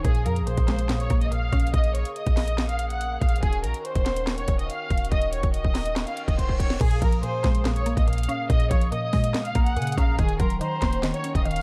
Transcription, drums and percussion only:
0.05 kick, closed hi-hat
0.15 closed hi-hat
0.26 closed hi-hat
0.36 closed hi-hat
0.47 closed hi-hat
0.58 kick, closed hi-hat
0.68 snare, clap, closed hi-hat
0.79 closed hi-hat
0.89 snare, clap, closed hi-hat
1.00 closed hi-hat
1.10 kick, closed hi-hat
1.21 closed hi-hat
1.32 closed hi-hat
1.53 kick, closed hi-hat
1.60 closed hi-hat
1.67 closed hi-hat
1.74 kick, closed hi-hat
1.84 closed hi-hat
1.95 closed hi-hat
2.05 closed hi-hat
2.16 closed hi-hat
2.26 kick, closed hi-hat
2.37 snare, clap, open hi-hat
2.48 closed hi-hat
2.58 snare, clap, closed hi-hat
2.69 closed hi-hat
2.79 closed hi-hat
2.90 closed hi-hat
3.01 closed hi-hat
3.21 kick, closed hi-hat
3.29 closed hi-hat
3.36 closed hi-hat
3.43 kick, closed hi-hat
3.53 closed hi-hat
3.64 closed hi-hat
3.74 closed hi-hat
3.85 closed hi-hat
3.95 kick, closed hi-hat
4.06 snare, clap, closed hi-hat
4.16 closed hi-hat
4.27 snare, clap, closed hi-hat
4.38 closed hi-hat
4.48 kick, closed hi-hat
4.59 closed hi-hat
4.70 closed hi-hat
4.90 kick, closed hi-hat
4.98 closed hi-hat
5.05 closed hi-hat
5.12 kick, closed hi-hat
5.22 closed hi-hat
5.33 closed hi-hat
5.43 kick, closed hi-hat
5.54 closed hi-hat
5.65 kick
5.75 snare, clap, open hi-hat
5.86 closed hi-hat
5.96 snare, clap, closed hi-hat
6.07 closed hi-hat
6.17 closed hi-hat
6.28 kick, closed hi-hat
6.38 kick, closed hi-hat
6.49 kick
6.60 kick, closed hi-hat
6.70 snare
6.81 kick, closed hi-hat, crash
6.91 closed hi-hat
7.02 kick, closed hi-hat
7.12 closed hi-hat
7.23 closed hi-hat
7.44 kick, snare, clap, closed hi-hat
7.55 closed hi-hat
7.65 snare, clap, closed hi-hat
7.76 closed hi-hat
7.86 closed hi-hat
7.97 kick, closed hi-hat
8.08 closed hi-hat
8.13 closed hi-hat
8.18 closed hi-hat
8.23 closed hi-hat
8.29 closed hi-hat
8.50 kick, closed hi-hat
8.60 closed hi-hat
8.71 kick, closed hi-hat
8.81 closed hi-hat
8.92 closed hi-hat
9.13 kick, open hi-hat
9.24 closed hi-hat
9.34 snare, clap, closed hi-hat
9.45 closed hi-hat
9.55 kick, closed hi-hat
9.66 closed hi-hat
9.77 closed hi-hat
9.82 closed hi-hat
9.87 closed hi-hat
9.92 closed hi-hat
9.98 kick, closed hi-hat
10.19 kick, closed hi-hat
10.29 closed hi-hat
10.40 kick, closed hi-hat
10.50 closed hi-hat
10.61 closed hi-hat
10.82 kick, snare, clap, closed hi-hat
10.93 closed hi-hat
11.03 snare, clap, closed hi-hat
11.14 closed hi-hat
11.24 closed hi-hat
11.35 kick, closed hi-hat
11.45 closed hi-hat
11.51 closed hi-hat
11.56 closed hi-hat

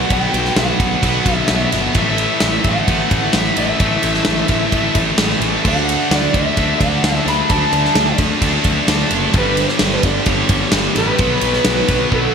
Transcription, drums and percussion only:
0.10 kick, ride
0.34 ride
0.45 snare
0.56 snare, ride
0.80 kick, ride
1.03 kick, ride
1.26 kick, ride
1.48 snare, ride
1.72 snare, ride
1.95 kick, ride
2.18 ride
2.40 snare, ride
2.64 kick, ride
2.88 kick, ride
3.11 kick, ride
3.33 snare, ride
3.57 ride
3.80 kick, ride
4.03 ride
4.14 snare
4.25 snare, ride
4.48 kick, ride
4.72 kick, ride
4.95 kick, ride
5.18 snare, ride
5.42 ride
5.65 kick, crash
5.89 ride
6.11 snare, ride
6.34 kick, ride
6.57 kick, ride
6.81 kick, ride
7.04 snare, ride
7.28 snare, ride
7.50 kick, ride
7.73 ride
7.85 snare
7.95 snare, ride
8.18 kick, ride
8.42 kick, ride
8.64 kick, ride
8.88 snare, ride
9.11 ride
9.34 kick, ride
9.57 ride
9.68 snare
9.79 snare, ride
10.03 kick, ride
10.26 kick, ride
10.49 kick, ride
10.72 snare, ride
10.96 snare, ride
11.18 kick, ride
11.41 ride
11.53 snare
11.65 snare, ride
11.88 kick, ride
12.12 kick

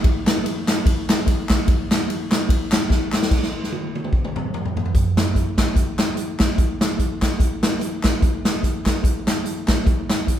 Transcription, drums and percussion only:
0.04 kick, ride
0.27 snare, clap, ride
0.46 ride
0.68 snare, clap, ride
0.86 kick, ride
1.09 snare, clap, ride
1.27 kick, ride
1.49 kick, snare, clap, ride
1.68 kick, ride
1.91 snare, clap, ride
2.10 ride
2.32 snare, clap, ride
2.49 kick, ride
2.72 snare, clap, ride
2.90 kick, snare
3.12 snare, clap
3.22 snare
3.31 kick, snare, crash
3.43 snare
3.63 snare
3.72 high tom
3.95 high tom
4.04 mid tom
4.13 kick
4.25 mid tom
4.36 mid tom
4.54 mid tom
4.65 floor tom
4.77 floor tom
4.85 floor tom
4.94 kick, closed hi-hat
5.17 snare, clap, closed hi-hat
5.35 kick, closed hi-hat
5.58 kick, snare, clap, closed hi-hat
5.76 kick, closed hi-hat
5.99 snare, clap, closed hi-hat
6.17 closed hi-hat
6.40 kick, snare, clap, closed hi-hat
6.58 kick, closed hi-hat
6.81 snare, clap, closed hi-hat
6.99 kick, closed hi-hat
7.22 kick, snare, clap, closed hi-hat
7.40 kick, closed hi-hat
7.63 snare, clap, closed hi-hat
7.81 closed hi-hat
8.03 kick, snare, clap, closed hi-hat
8.22 kick, closed hi-hat
8.45 snare, clap, closed hi-hat
8.63 kick, closed hi-hat
8.86 kick, snare, clap, closed hi-hat
9.04 kick, closed hi-hat
9.27 snare, clap, closed hi-hat
9.45 closed hi-hat
9.68 kick, snare, clap, closed hi-hat
9.87 kick, closed hi-hat
10.10 snare, clap, closed hi-hat
10.27 kick, closed hi-hat

